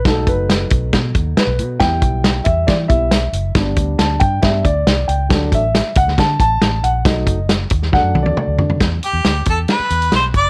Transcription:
<<
  \new Staff \with { instrumentName = "Harmonica" } { \time 4/4 \key e \minor \tempo 4 = 137 r1 | r1 | r1 | r1 |
r1 | r8 g'4 a'8 b'4 c''8 d''8 | }
  \new Staff \with { instrumentName = "Grand piano" } { \time 4/4 \key e \minor a'8 b'4. r4 b'4 | g''4. e''8 d''8 e''4. | r4 a''8 g''8 e''8 d''4 g''8 | r8 e''4 fis''8 a''8 a''4 fis''8 |
dis''4 r4 \tuplet 3/2 { fis''4 d''8 } d''4 | r1 | }
  \new Staff \with { instrumentName = "Grand piano" } { \time 4/4 \key e \minor <fis a dis'>1 | <g b e'>2~ <g b e'>8 <g b e'>8 r4 | <g b d'>2 <g b d'>8 r4. | <fis a d'>8 r2. r8 |
<fis a dis'>8 r4. <fis a d'>2 | r1 | }
  \new Staff \with { instrumentName = "Fingered electric bass" } { \clef bass \time 4/4 \key e \minor b,,8 fis,,4 b,,8 b,8 dis,8 r16 b,,16 b,8 | e,8 b,,4 e,8 e8 b,,4 fis,,8 | g,,8 d,8 d,8 g,8 g,8 d,8 c,8 cis,8 | d,8 a,,8. r16 c,16 d,16 d8 a,,8 a,,8 bes,,8 |
b,,8 fis,,4 dis,8 d,16 fis,16 c,16 d,16 r16 d,16 d8 | e,8 r16 e,16 d,8 e,8 r8 e,8 b,,8 fis,,8 | }
  \new DrumStaff \with { instrumentName = "Drums" } \drummode { \time 4/4 <hh bd sn>8 <hh bd>8 <hh sn>8 <hh bd>8 <hh bd sn>8 <hh bd>8 <hh sn>8 hh8 | <hh bd sn>8 <hh bd>8 <hh sn>8 <hh bd>8 <hh bd sn>8 <hh bd>8 <hh sn>8 hh8 | <hh bd sn>8 <hh bd>8 <hh sn>8 <hh bd>8 <hh bd sn>8 <hh bd>8 <hh sn>8 hh8 | <hh bd sn>8 <hh bd>8 <hh sn>8 <hh bd>16 sn16 <hh bd sn>8 <hh bd>8 <hh sn>8 hh8 |
<hh bd sn>8 <hh bd>8 <hh sn>8 <hh bd>16 sn16 <bd sn>8 tommh16 tommh16 toml8 tomfh16 tomfh16 | <hh bd sn>8 hh8 <hh sn>8 <hh bd>8 <hh sn>8 hh16 hh16 <hh sn>8 <hh bd>8 | }
>>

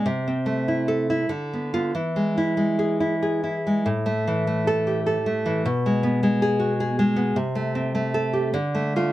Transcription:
\new Staff \with { instrumentName = "Nylon-string guitar" } { \time 3/4 \key a \minor \tempo 4 = 100 << { r4 \tuplet 3/2 { r8 a'4 r4 f'8 } | r4 \tuplet 3/2 { r8 gis'4 } r4 | r4 \tuplet 3/2 { r8 a'4 } r4 | r4 \tuplet 3/2 { r8 gis'4 } r4 |
r4 \tuplet 3/2 { r8 a'4 r4 f'8 } | } \\ { \tuplet 3/2 { c8 c'8 a8 e'4 e'8 d8 b8 b8 } | \tuplet 3/2 { e8 gis8 e'8 gis4 e'8 gis'8 e'8 gis8 } | \tuplet 3/2 { a,8 a8 e8 a4 g'8 a'8 a8 e8 } | \tuplet 3/2 { b,8 gis8 b8 gis4 fis'8 gis'8 gis8 b8 } |
\tuplet 3/2 { c8 a8 c'8 a4 g'8 d8 a8 a8 } | } >> }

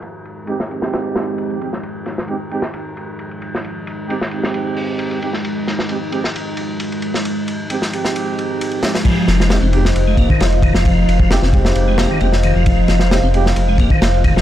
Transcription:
<<
  \new Staff \with { instrumentName = "Ambient pad" } { \time 4/4 \key f \minor \tempo 4 = 133 << { f''1 | ees''1~ | ees''1~ | ees''1~ |
ees''1 | f''1~ | f''1~ | f''1 | } \\ { <f aes ees'>1~ | <f aes ees'>1~ | <f aes ees'>1~ | <f aes ees'>1~ |
<f aes ees'>1 | <f' c'' ees''>1~ | <f' c'' ees''>1~ | <f' c'' ees''>1 | } >> }
  \new Staff \with { instrumentName = "Brass ensemble" } { \time 4/4 \key f \minor r4 <aes c' ees' g'>8 <aes c' ees' g'>2 <aes c' ees' g'>8 | r4 <aes c' ees' g'>8 <aes c' ees' g'>8 r2 | r4 <aes c' ees' g'>8 <aes c' ees' g'>2 <aes c' ees' g'>8 | r4 <aes c' ees' g'>8 <aes c' ees' g'>8 r2 |
r4 <aes c' ees' g'>8 <aes c' ees' g'>2 <aes c' ees' g'>8 | r4 <aes c' ees' g'>8 <aes c' ees' g'>8 r2 | r4 <aes c' ees' g'>8 <aes c' ees' g'>4. <aes c' ees' g'>8 r8 | r4 <aes c' ees' g'>8 <aes c' ees' g'>8 r2 | }
  \new Staff \with { instrumentName = "Tonewheel organ" } { \clef bass \time 4/4 \key f \minor r1 | r1 | r1 | r1 |
r1 | f4 bes16 c'16 r8. aes16 bes16 ees16 bes16 r16 ees16 f16 | f4 bes16 c'16 r8. aes16 bes16 ees16 bes16 r16 ees16 f16 | f4 bes16 c'16 r8. aes16 bes16 ees16 bes16 r16 ees16 f16 | }
  \new Staff \with { instrumentName = "Detuned saw bass" } { \clef bass \time 4/4 \key f \minor r1 | r1 | r1 | r1 |
r1 | r8 f,,8. f,,8. f,,8. f,,16 f,,8. f,,16~ | f,,8 f,,8. f,,8. f,,8. f,,16 f,,8. f,,16~ | f,,8 f,,8. f,,8. f,,8. f,,16 f,,8. f,,16 | }
  \new DrumStaff \with { instrumentName = "Drums" } \drummode { \time 4/4 cymr8 cymr8 cymr16 sn16 cymr16 sn16 <cymr sn>8 <cymr sn>8 cymr16 cymr16 cymr16 sn16 | cymr8 <cymr sn>16 sn16 cymr8 cymr16 sn16 cymr8 cymr8 cymr16 cymr16 cymr16 sn16 | cymr8 cymr8 cymr16 sn16 cymr16 sn16 cymr8 hho8 cymr16 cymr16 cymr16 sn16 | cymr8 <cymr sn>16 sn16 cymr8 cymr16 sn16 cymr8 cymr8 cymr16 cymr16 cymr16 sn16 |
cymr8 cymr8 cymr16 sn16 cymr16 sn16 cymr8 cymr8 cymr16 cymr16 <cymr sn>16 <cymr sn>16 | <cymc bd cymr>8 <cymr sn>16 sn16 <cymr sn>8 cymr16 sn16 cymr8 <bd cymr>16 bd16 <cymr sn>16 cymr16 <bd cymr>16 sn16 | <bd cymr>8 cymr16 bd16 <cymr sn>16 sn16 <bd cymr>16 sn16 cymr8 <cymr sn>8 cymr16 sn16 cymr8 | <bd cymr>8 <cymr sn>16 sn16 <cymr sn>8 cymr16 sn16 cymr8 <bd cymr>16 bd16 <cymr sn>16 cymr16 <bd cymr>16 sn16 | }
>>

